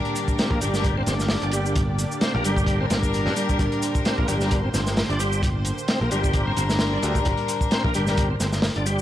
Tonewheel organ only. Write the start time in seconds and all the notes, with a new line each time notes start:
0.39 C4
0.51 A#3
0.62 G3
0.97 C4
1.07 C4
1.43 D4
1.53 G3
1.76 G3
2.22 C4
2.35 A#3
2.45 G3
2.81 C4
2.91 C4
3.26 D4
3.37 G3
3.59 G3
4.05 C4
4.18 A#3
4.28 G3
4.64 C4
4.74 C4
5.10 D4
5.20 G3
5.43 G3
5.89 C4
6.01 A#3
6.12 G3
6.47 C4
6.57 C4
6.93 D4
7.03 G3
7.26 G3
7.71 C4
7.84 A#3
7.95 G3
8.30 C4
8.40 C4
8.76 D4
8.86 G3